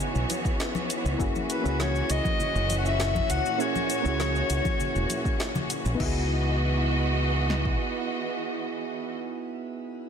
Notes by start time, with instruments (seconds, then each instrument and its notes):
Already playing: string section E3 B3 F#4 C#5, synth keys B3 D#4 E4 F#4 G#4
0.00 cabasa
0.15 fretless electric bass B1, cabasa
0.30 closed hi-hat, high conga, cabasa
0.45 kick, cabasa
0.60 snare, cabasa
0.75 high conga, cabasa
0.90 closed hi-hat, cabasa
1.05 fretless electric bass C#2, cabasa
1.18 fretless electric bass F#1, string section A#2 C#4 F#4, synth keys A#3 C#4 E4 F#4 G#4, kick, cabasa
1.36 high conga, cabasa
1.50 soprano saxophone B4, closed hi-hat, cabasa
1.62 fretless electric bass C#2, synth keys A#3 C#4 E4, cabasa
1.67 synth keys F#4 G#4
1.80 soprano saxophone C#5, snare, high conga, cabasa
1.96 cabasa
2.10 fretless electric bass C#2, soprano saxophone D#5, closed hi-hat, cabasa
2.25 kick, high conga, cabasa
2.40 low conga, cabasa
2.55 fretless electric bass F#1, cabasa
2.70 closed hi-hat, high conga, cabasa
2.78 soprano saxophone F#5
2.86 soprano saxophone E5, cabasa
3.00 snare, cabasa
3.15 kick, high conga, cabasa
3.30 fretless electric bass C#2, soprano saxophone F#5, closed hi-hat, cabasa
3.46 cabasa
3.58 synth keys A#3 C#4 E4 F#4 G#4, soprano saxophone C#5, cabasa
3.76 high conga, cabasa
3.90 closed hi-hat, cabasa
4.02 fretless electric bass C#2, synth keys A#3 C#4 E4, cabasa
4.07 synth keys F#4 G#4
4.20 snare, high conga, cabasa
4.36 cabasa
4.50 fretless electric bass C#2, closed hi-hat, cabasa
4.65 kick, high conga, cabasa
4.80 low conga, cabasa
4.96 fretless electric bass E1, cabasa
5.10 closed hi-hat, high conga, cabasa
5.25 kick, cabasa
5.40 snare, cabasa
5.55 high conga, low conga, cabasa
5.70 closed hi-hat, cabasa
5.86 fretless electric bass A#1, cabasa
5.95 synth keys B3 D#4
6.00 fretless electric bass C#2, string section E3 B3 F#4 D#5, synth keys E4 F#4, kick, crash
6.05 synth keys G#4
7.50 snare
7.65 kick